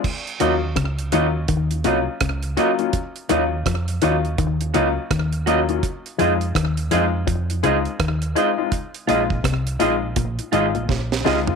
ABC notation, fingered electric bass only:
X:1
M:4/4
L:1/16
Q:"Swing 16ths" 1/4=83
K:Ebdor
V:1 name="Fingered electric bass" clef=bass
z2 E,,2 D,,2 E,,2 E,,2 C,, z D,,2 z2 | z2 E,,2 F,,2 E,,2 E,,2 D,, z E,,4 | z2 F,,2 E,,2 F,,2 F,,2 D,, z E,,2 z2 | z2 B,,,2 C,,2 B,,,2 B,,, z A,,, B,,, B,,,2 D,, z |]